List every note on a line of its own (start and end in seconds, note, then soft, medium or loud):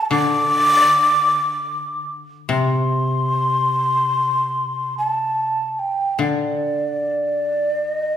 0.10 3.28 D3 medium
0.10 2.12 D6 loud
2.49 5.72 C3 medium
2.49 4.95 C6 loud
4.98 5.81 A5 medium
5.79 6.22 G5 medium
6.19 8.17 D3 medium
6.19 7.92 D5 medium
7.92 8.17 D#5 medium